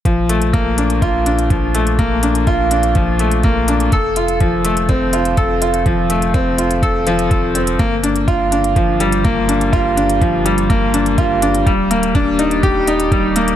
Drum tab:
HH |x-xxx-xxx-xxx-xx|x-xxx-xxx-xxx-xx|x-xxx-xxx-xxx-xx|x-xxx-xxx-xxx-xx|
BD |o---o---o---o---|o---o---o---o---|o---o---o---o---|o---o---o---o---|

HH |x-xxx-xxx-xxx-xx|x-xxx-xxx-xxx-xx|x-xxx-xxx-xxx-xx|
BD |o---o---o---o---|o---o---o---o---|o---o---o---o---|